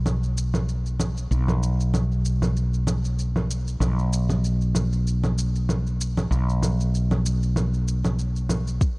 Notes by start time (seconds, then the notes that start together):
Already playing: B1
0.06 low conga, shaker
0.24 shaker
0.38 shaker
0.54 low conga, shaker
0.69 shaker
0.86 shaker
0.99 low conga, shaker
1.17 shaker
1.31 B1, shaker
1.48 low conga, shaker
1.63 shaker
1.80 shaker
1.94 low conga, shaker
2.12 shaker
2.25 shaker
2.42 low conga, shaker
2.57 shaker
2.74 shaker
2.87 low conga, shaker
3.05 shaker
3.19 shaker
3.36 low conga, shaker
3.51 shaker
3.68 shaker
3.80 B1, low conga, shaker
3.99 shaker
4.13 shaker
4.30 low conga, shaker
4.45 shaker
4.62 shaker
4.75 low conga, shaker
4.93 shaker
5.07 shaker
5.23 low conga, shaker
5.38 shaker
5.55 shaker
5.69 low conga, shaker
5.87 shaker
6.01 shaker
6.17 low conga, shaker
6.31 B1, shaker
6.49 shaker
6.62 low conga, shaker
6.80 shaker
6.94 shaker
7.11 low conga, shaker
7.25 shaker
7.43 shaker
7.56 low conga, shaker
7.74 shaker
7.88 shaker
8.04 low conga, shaker
8.19 shaker
8.36 shaker
8.49 low conga, shaker
8.67 shaker
8.81 kick, shaker